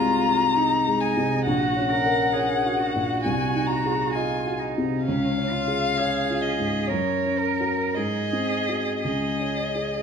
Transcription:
Already playing: C2 C3 D#4 F4 G#4 A#5
0.00 G#3
0.27 G#4
0.56 D#4
0.87 G#3
1.00 G#5
1.17 C3
1.45 A#1 F#4 F#5
1.76 C#4
1.89 A#4
2.05 A#4
2.33 G#4 C#5
2.66 F#4
2.79 F#4
2.96 A#2
3.23 C2 G#5
3.55 D#4
3.67 A#5
3.85 G#4
4.13 F4 D#5 G#5
4.46 F#4
4.59 D#4
4.78 C3
5.05 C#2 C#4 F5
5.38 C#4
5.51 F4
5.68 G#4
5.97 G#4 C#5
6.30 F4
6.42 D#5
6.59 G#2
6.88 F#2 A#4 C#5
7.25 C#4
7.38 A#4
7.60 F#4 A#4
7.95 G#2 G#4 D#5
8.33 C4
8.68 F#4 G#4
9.00 G#4 D#5
9.04 C#2
9.40 C#4
9.75 G#4

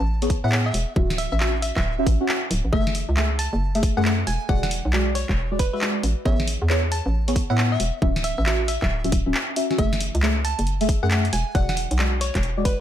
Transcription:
0.00 A1
0.22 B3 G#4 C#5, open hi-hat
0.30 kick, open hi-hat
0.44 A2 B3 G#4 E5 F#5
0.52 B3 G#4 C#5, clap
0.66 E5
0.74 E1, open hi-hat
0.96 D1 C#4 F#4 E5, kick
1.10 snare
1.18 E5, open hi-hat
1.32 A1 E5
1.40 C#4 F#4 E5, clap
1.62 E5, open hi-hat
1.76 D1 E5, kick, clap
1.99 C#4 F#4 E5
2.06 A1, kick, open hi-hat
2.21 C#4 F#4 F#5
2.29 C#4 F#4 E5, clap
2.51 D1, open hi-hat
2.65 A1
2.73 F#1 A3 G#4 E5, kick
2.87 snare
2.95 open hi-hat
3.09 C#2
3.17 A3 G#4 E5, clap
3.39 A5, open hi-hat
3.53 F#1
3.75 A3 G#4 E5, open hi-hat
3.83 kick, open hi-hat
3.97 F#2 A3 G#4 F#5
4.05 A3 G#4 E5, clap
4.27 E1 G#5, open hi-hat
4.49 E1 G#3 F#4 D5 F#5, kick
4.63 F#5, snare
4.71 open hi-hat
4.85 B1
4.93 G#3 F#4 D5, clap
5.15 C#5, open hi-hat
5.29 E1, kick, clap
5.51 G#3 F#4 D5
5.59 B4, kick, open hi-hat
5.73 G#3 F#4 B4 E5
5.81 G#3 F#4 D5, clap
6.03 A1, open hi-hat
6.25 A1 B3 G#4 C#5 E5, kick
6.40 snare
6.48 open hi-hat
6.62 E2
6.70 B3 G#4 C#5, clap
6.92 A5, open hi-hat
7.06 A1
7.28 B3 G#4 C#5, open hi-hat
7.36 kick, open hi-hat
7.50 A2 B3 G#4 E5 F#5
7.58 B3 G#4 C#5, clap
7.72 E5
7.80 E1, open hi-hat
8.02 D1 C#4 F#4 E5, kick
8.16 snare
8.24 E5, open hi-hat
8.38 A1 E5
8.46 C#4 F#4 E5, clap
8.68 E5, open hi-hat
8.82 D1 E5, kick, clap
9.04 D1 C#4 F#4 E5, open hi-hat
9.12 D1, kick, open hi-hat
9.26 D1 C#4 F#4 E5
9.34 clap
9.56 C#4 F#4 E5, open hi-hat
9.71 C#4 F#4 E5, snare
9.78 F#1 A3 G#4 E5, kick, closed hi-hat
9.93 snare
10.01 open hi-hat
10.15 C#2, closed hi-hat
10.23 A3 G#4 E5, clap
10.45 A5, open hi-hat
10.59 F#1, closed hi-hat
10.67 closed hi-hat
10.81 A3 G#4 E5, open hi-hat
10.89 kick, open hi-hat
11.03 F#2 A3 G#4 F#5
11.11 A3 G#4 E5, clap, closed hi-hat
11.25 closed hi-hat
11.33 E1 G#5, open hi-hat
11.55 E1 G#3 F#4 D5 F#5, kick, closed hi-hat
11.69 F#5, snare
11.77 open hi-hat
11.91 B1, closed hi-hat
11.99 G#3 F#4 D5, clap
12.21 C#5, open hi-hat
12.35 E1, kick, clap, closed hi-hat
12.43 closed hi-hat
12.57 G#3 F#4 D5
12.65 B4, kick, open hi-hat

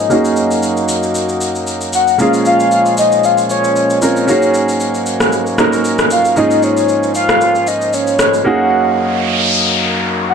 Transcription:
Already playing: G#2 A#3 C#4 D#4 F4 G#4 D#5
0.10 F#2 F#3 A#3 C#4 D#4 F#4 G#4, shaker
0.25 shaker
0.36 shaker
0.51 shaker
0.63 shaker
0.77 shaker
0.89 shaker
1.03 shaker
1.15 shaker
1.29 shaker
1.41 shaker
1.55 shaker
1.67 shaker
1.81 shaker
1.93 F#5, shaker
2.08 shaker
2.18 A#2 F3 G#3 A#3 C#4 F4 G#4 F5, shaker
2.34 shaker
2.45 F5, shaker
2.60 shaker
2.71 shaker
2.86 shaker
2.97 D#5, shaker
3.12 shaker
3.24 F5, shaker
3.38 shaker
3.50 C#5, shaker
3.64 shaker
3.76 shaker
3.90 shaker
4.02 A#3 C4 C#4 F4 A#4 C#5, shaker
4.17 shaker
4.27 G#2 F#3 A#3 C#4 D#4 F#4 G#4, shaker
4.42 shaker
4.54 shaker
4.69 shaker
4.80 shaker
4.95 shaker
5.06 shaker
5.20 cross-stick, shaker
5.32 shaker
5.46 shaker
5.58 A#3 C#4 D#4 F#4 A#4, cross-stick, shaker
5.73 shaker
5.85 shaker
5.99 cross-stick, shaker
6.11 F5, shaker
6.25 shaker
6.36 G#2 F3 A#3 C#4 D#4 F4 G#4 D#5, shaker
6.51 shaker
6.63 C#5, shaker
6.77 shaker
6.89 shaker
7.03 shaker
7.15 F5, shaker
7.29 cross-stick, shaker
7.41 shaker
7.55 shaker
7.67 D#5, shaker
7.81 shaker
7.93 C#5, shaker
8.07 shaker
8.19 cross-stick, shaker
8.34 shaker
8.44 F#2 F#3 A#3 C#4 D#4 F#4 G#4 F#5, noise sweep
10.29 F#5

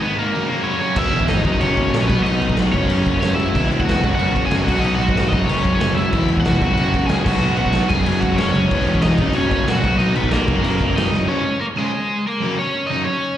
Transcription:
0.01 G#2 D#3 G#3 B3 D#4 B4
0.17 G#2 D#3 G#3 A#3 B3 D#4 A#4
0.32 F#2 C#3 F#3 A#3 C#4
0.48 F#2 C#3 F#3 A#3 C#4
0.64 F#2 C#3 F#3 A#3 C#4 C#5
0.81 F#2 C#3 F#3 A#3 C#4 C#5
0.95 E1 E2 B2 E3 G#3 E5, kick, crash
0.99 B3 E4 G#4
1.12 E1, crash
1.21 kick
1.28 G#1 D#4 D#5, snare, crash
1.45 F#1 F#2 C#3 F#3 A#3 C#4 F#4, kick, crash
1.60 F#1 C#4 C#5, crash
1.77 kick, crash
1.93 A#1 F#2 C#3 F#3 A#3 C#4 F#4, snare, crash
2.07 B1 B2 F#3 B3 B4, kick, crash
2.11 D#4 F#4
2.23 B1 D#4 D#5, crash
2.40 B1, crash
2.50 kick
2.56 B1 B2 F#3 B3 D#4, snare, crash
2.61 F#4
2.73 F#1 F#2 C#3 F#3 C#4 C#5, kick, crash
2.77 A#3 C#4 F#4
2.90 F#1, crash
3.06 F#1, kick, crash
3.20 F#1 F#2 C#4 C#5, snare, crash
3.24 C#3 F#3 A#3 C#4 F#4
3.35 F#1 E4 E5
3.40 crash
3.54 E1 E2 B2 E3 G#3 B3 E4, kick, crash
3.70 E1, crash
3.80 F#5, kick
3.85 E1 F#4, crash
3.89 snare
4.03 F#1 F#2 C#3 F#3 A#3 C#4 F#4, kick, crash
4.15 F#1 F#4 F#5
4.19 crash
4.36 kick, crash
4.46 F#1 G#5
4.51 F#2 C#3 F#3 A#3 C#4 G#4, snare, crash
4.55 F#4
4.64 B1 F#5, kick
4.68 B2 F#3 B3 D#4 F#4, crash
4.80 B1 D#5, crash
4.86 D#4
4.95 B1 F#5
5.00 F#4, crash
5.09 kick
5.14 G#1 B2, snare, crash
5.19 F#3 B3 D#4 F#4
5.28 F#1 D#5
5.33 F#2 C#3 F#3 A#3 C#4 D#4 F#4, kick, crash
5.45 F#1 C#5
5.49 C#4, crash
5.65 F#1, kick, crash
5.75 C#5
5.80 F#1 F#2 C#3 F#3 A#3 C#4 F#4, snare, crash
5.93 F#1 E5
5.97 E4, crash
6.12 E1 E2 B2 E3 G#3 B3 E4, kick, crash
6.28 E1, crash
6.37 F#5, kick
6.45 F1 F#4, snare, crash
6.61 F#1 F#2 C#3 F#3 A#3 C#4 F#4, kick, crash
6.74 F#1 F#5, crash
6.79 F#4
6.94 kick, crash
7.07 C#2 F#2 G#4 G#5, snare, crash
7.11 C#3 F#3 A#3 C#4 F#4
7.24 B1 B2 F#3 F#5, kick, crash
7.28 B3 D#4 F#4
7.43 B1, crash
7.57 B1 F#4 F#5, crash
7.66 kick
7.72 B1 B2 F#3, snare, crash
7.77 B3 D#4 F#4
7.89 F#1 F#2 C#3 F#3 G#5, kick, crash
7.93 A#3 C#4 F#4 G#4
8.05 F#1 G#4 G#5, crash
8.20 F#1 F#5, kick, crash
8.24 F#4
8.36 F#1 C#5, snare, crash
8.40 F#2 C#3 F#3 A#3 C#4 F#4
8.52 F#1 C#4 C#5, crash
8.71 E1 E2 B2 E3 G#3 B3 E4 G#4, kick, crash
8.85 E1, crash
8.95 kick
9.01 E1 D#4 D#5, snare, crash
9.18 F#1 F#2, kick, crash
9.22 C#3 F#3 A#3 C#4 F#4
9.33 F#1 C#4 C#5, crash
9.51 C#5, kick, crash
9.55 C#4
9.67 A#1 F#2 C#3 F#3 A#3 C#4 F#5, snare, crash
9.71 F#4
9.84 B1 B2 F#3 B3 D#4 F#4, kick, crash
9.98 B1 D#4 D#5, crash
10.15 B1 B3 B4, crash
10.24 kick
10.30 B1 B2 A#3 A#4, snare, crash
10.34 F#3 B3 D#4 F#4
10.48 F#1 F#2 C#3 F#3 A#3 C#4 F#4, kick, crash
10.61 F#1 A#3 A#4, crash
10.80 F#1, kick, crash
10.96 F#1 F#2 C#3 F#3 A#3 C#4 D#4 F#4 D#5, snare, crash
11.12 F#1, snare
11.28 C#3 F3 G#3 C#4 C#5
11.60 A#3 A#4
11.78 C#3 F3 G#3 C#4 G#4
12.27 A#3 A#4
12.42 F#2 C#3 F#3 A#3 C#4
12.59 C#4 C#5
12.87 F#2 D#4 D#5
12.91 C#3 F#3 A#3 C#4
13.05 C#4 C#5

